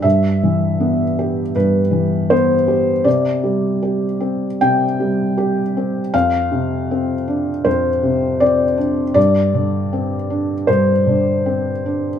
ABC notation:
X:1
M:4/4
L:1/8
Q:1/4=79
K:C
V:1 name="Felt piano"
e4 B2 c2 | d4 g4 | f4 c2 d z | d4 c4 |]
V:2 name="Felt piano"
G,, E, B, G G,, E, B, G | C, G, G C C, G, G C | F,, C, C D F,, C, C D | G,, D, C D G,, D, C D |]